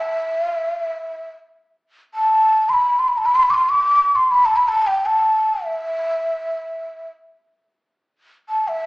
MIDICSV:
0, 0, Header, 1, 2, 480
1, 0, Start_track
1, 0, Tempo, 500000
1, 8508, End_track
2, 0, Start_track
2, 0, Title_t, "Ney"
2, 0, Program_c, 0, 77
2, 0, Note_on_c, 0, 76, 75
2, 404, Note_off_c, 0, 76, 0
2, 404, Note_on_c, 0, 77, 75
2, 529, Note_off_c, 0, 77, 0
2, 529, Note_on_c, 0, 76, 75
2, 664, Note_off_c, 0, 76, 0
2, 664, Note_on_c, 0, 77, 75
2, 788, Note_off_c, 0, 77, 0
2, 788, Note_on_c, 0, 76, 75
2, 1245, Note_off_c, 0, 76, 0
2, 2058, Note_on_c, 0, 81, 82
2, 2584, Note_on_c, 0, 84, 71
2, 2598, Note_off_c, 0, 81, 0
2, 2623, Note_on_c, 0, 83, 77
2, 2633, Note_off_c, 0, 84, 0
2, 2870, Note_on_c, 0, 84, 66
2, 2884, Note_off_c, 0, 83, 0
2, 2957, Note_on_c, 0, 83, 64
2, 2972, Note_off_c, 0, 84, 0
2, 3047, Note_on_c, 0, 81, 62
2, 3061, Note_off_c, 0, 83, 0
2, 3125, Note_on_c, 0, 83, 64
2, 3139, Note_off_c, 0, 81, 0
2, 3219, Note_on_c, 0, 84, 75
2, 3233, Note_off_c, 0, 83, 0
2, 3290, Note_on_c, 0, 83, 64
2, 3304, Note_off_c, 0, 84, 0
2, 3360, Note_on_c, 0, 86, 65
2, 3375, Note_off_c, 0, 83, 0
2, 3398, Note_on_c, 0, 84, 70
2, 3408, Note_off_c, 0, 86, 0
2, 3544, Note_on_c, 0, 86, 80
2, 3558, Note_off_c, 0, 84, 0
2, 3989, Note_on_c, 0, 84, 73
2, 4003, Note_off_c, 0, 86, 0
2, 4138, Note_on_c, 0, 83, 74
2, 4152, Note_off_c, 0, 84, 0
2, 4277, Note_on_c, 0, 81, 69
2, 4292, Note_off_c, 0, 83, 0
2, 4381, Note_on_c, 0, 83, 74
2, 4395, Note_off_c, 0, 81, 0
2, 4496, Note_on_c, 0, 81, 74
2, 4510, Note_off_c, 0, 83, 0
2, 4627, Note_off_c, 0, 81, 0
2, 4627, Note_on_c, 0, 81, 64
2, 4674, Note_on_c, 0, 79, 70
2, 4683, Note_off_c, 0, 81, 0
2, 4856, Note_on_c, 0, 81, 73
2, 4871, Note_off_c, 0, 79, 0
2, 5419, Note_on_c, 0, 76, 67
2, 5433, Note_off_c, 0, 81, 0
2, 6794, Note_off_c, 0, 76, 0
2, 8154, Note_on_c, 0, 81, 77
2, 8334, Note_on_c, 0, 76, 78
2, 8348, Note_off_c, 0, 81, 0
2, 8508, Note_off_c, 0, 76, 0
2, 8508, End_track
0, 0, End_of_file